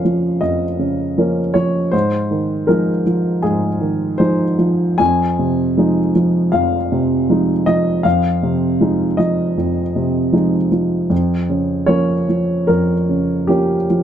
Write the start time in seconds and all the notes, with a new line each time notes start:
Already playing: F2 C#3 F3 A#3 C#4 F5
0.05 F3
0.41 F2 D#5
0.79 C#3
1.18 F3 A#3 C#4
1.54 F3 C#5
1.91 G#2 C5
2.31 D#3
2.67 F3 G#3 D#4 A#4
3.06 F3
3.42 G#2 G#4
3.81 D#3
4.18 F3 G#3 D#4 C5
4.59 F3
4.98 F2 G#5
5.39 C3
5.77 F3 G#3 D#4
6.15 F3
6.52 F2 F5
6.92 C3
7.30 F3 G#3 D#4
7.66 F3 D#5
8.03 F2 F5
8.43 C3
8.81 F3 G#3 D#4
9.17 F3 D#5
9.58 F2
9.96 C3
10.33 F3 G#3 D#4
10.72 F3
11.10 F2
11.49 C#3
11.86 F3 A#3 C#4 C#5
12.29 F3
12.67 F2 A#4
13.09 C#3
13.47 F3 A#3 C#4 G4
13.90 F3